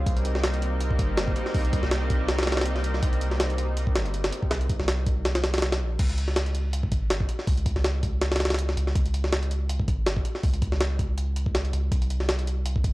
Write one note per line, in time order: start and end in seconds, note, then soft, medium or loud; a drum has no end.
0.06 1.01 C2 loud
0.06 5.95 G3 medium
0.06 5.95 A#3 medium
0.06 5.95 C4 medium
0.06 5.95 D#4 medium
0.06 kick loud
0.06 closed hi-hat medium
0.17 closed hi-hat soft
0.25 closed hi-hat medium
0.35 snare medium
0.44 snare loud
0.44 closed hi-hat medium
0.54 closed hi-hat soft
0.62 closed hi-hat medium
0.81 closed hi-hat medium
0.91 kick medium
0.99 1.35 G1 loud
0.99 kick loud
0.99 closed hi-hat medium
1.17 snare loud
1.17 closed hi-hat medium
1.28 kick loud
1.36 closed hi-hat medium
1.46 snare soft
1.54 1.82 C2 loud
1.54 kick loud
1.54 open hi-hat medium
1.65 closed hi-hat soft
1.73 kick loud
1.73 closed hi-hat medium
1.83 3.01 C2 loud
1.83 snare medium
1.91 snare loud
1.91 closed hi-hat medium
2.10 kick loud
2.10 closed hi-hat medium
2.28 snare loud
2.28 closed hi-hat medium
2.39 snare medium
2.39 closed hi-hat medium
2.43 snare medium
2.43 closed hi-hat medium
2.47 snare medium
2.47 closed hi-hat medium
2.52 snare medium
2.52 closed hi-hat medium
2.57 snare medium
2.57 closed hi-hat medium
2.61 snare medium
2.61 closed hi-hat medium
2.66 closed hi-hat medium
2.76 snare medium
2.84 closed hi-hat medium
2.94 snare soft
3.03 3.97 C2 loud
3.03 kick loud
3.03 closed hi-hat medium
3.13 closed hi-hat soft
3.21 closed hi-hat medium
3.31 snare medium
3.40 snare loud
3.40 closed hi-hat medium
3.50 closed hi-hat soft
3.58 closed hi-hat medium
3.77 closed hi-hat medium
3.87 kick medium
3.95 4.31 G1 loud
3.95 snare loud
3.95 closed hi-hat medium
4.06 closed hi-hat soft
4.14 closed hi-hat medium
4.24 snare loud
4.24 closed hi-hat medium
4.32 closed hi-hat medium
4.43 kick medium
4.51 4.78 C2 loud
4.51 snare loud
4.51 closed hi-hat medium
4.61 closed hi-hat soft
4.69 kick loud
4.69 closed hi-hat medium
4.80 5.82 C2 loud
4.80 snare medium
4.88 snare loud
4.88 closed hi-hat medium
5.06 kick loud
5.06 closed hi-hat medium
5.25 snare loud
5.25 closed hi-hat medium
5.35 snare loud
5.35 closed hi-hat medium
5.44 snare loud
5.44 closed hi-hat medium
5.54 snare medium
5.54 closed hi-hat medium
5.58 snare medium
5.58 closed hi-hat medium
5.62 snare loud
5.62 closed hi-hat medium
5.72 snare loud
5.72 closed hi-hat medium
5.81 5.98 A#1 medium
5.99 6.93 C#2 loud
5.99 kick loud
5.99 closed hi-hat medium
5.99 crash medium
6.09 closed hi-hat soft
6.18 closed hi-hat medium
6.28 snare medium
6.36 snare loud
6.36 closed hi-hat medium
6.46 closed hi-hat soft
6.55 closed hi-hat medium
6.73 closed hi-hat medium
6.83 kick medium
6.92 7.27 G#1 medium
6.92 kick loud
6.92 closed hi-hat medium
7.10 snare loud
7.10 closed hi-hat medium
7.20 kick loud
7.29 closed hi-hat medium
7.39 snare soft
7.47 7.74 C#2 loud
7.47 kick loud
7.47 open hi-hat medium
7.57 closed hi-hat soft
7.66 kick loud
7.66 closed hi-hat medium
7.76 8.76 C#2 loud
7.76 snare medium
7.84 snare loud
7.84 closed hi-hat medium
8.03 kick loud
8.03 closed hi-hat medium
8.21 snare loud
8.21 closed hi-hat medium
8.32 snare medium
8.32 closed hi-hat medium
8.36 snare medium
8.36 closed hi-hat medium
8.40 snare medium
8.40 closed hi-hat medium
8.45 snare medium
8.45 closed hi-hat medium
8.50 snare medium
8.50 closed hi-hat medium
8.54 snare medium
8.54 closed hi-hat medium
8.59 closed hi-hat medium
8.69 snare medium
8.77 8.94 C#2 loud
8.77 closed hi-hat medium
8.87 snare soft
8.95 9.89 C#2 loud
8.95 kick loud
8.95 closed hi-hat medium
9.06 closed hi-hat soft
9.14 closed hi-hat medium
9.24 snare medium
9.33 snare loud
9.33 closed hi-hat medium
9.43 closed hi-hat soft
9.51 closed hi-hat medium
9.69 closed hi-hat medium
9.80 kick loud
9.88 10.24 G#1 medium
9.88 kick loud
9.88 closed hi-hat medium
10.06 snare loud
10.06 closed hi-hat medium
10.17 kick loud
10.25 closed hi-hat medium
10.35 snare soft
10.43 10.71 C#2 loud
10.43 kick loud
10.43 open hi-hat medium
10.54 closed hi-hat soft
10.62 kick loud
10.62 closed hi-hat medium
10.72 11.73 C#2 loud
10.72 snare medium
10.81 snare loud
10.81 closed hi-hat medium
10.99 kick medium
10.99 closed hi-hat medium
11.18 closed hi-hat medium
11.36 closed hi-hat medium
11.46 kick medium
11.55 snare loud
11.55 closed hi-hat medium
11.65 closed hi-hat soft
11.73 11.90 C#2 loud
11.73 closed hi-hat medium
11.92 12.86 C2 loud
11.92 kick loud
11.92 closed hi-hat medium
12.02 closed hi-hat soft
12.10 closed hi-hat medium
12.20 snare medium
12.29 snare loud
12.29 closed hi-hat medium
12.39 closed hi-hat soft
12.47 closed hi-hat medium
12.66 closed hi-hat medium
12.76 kick loud
12.84 12.93 G1 loud
12.84 kick loud
12.84 closed hi-hat medium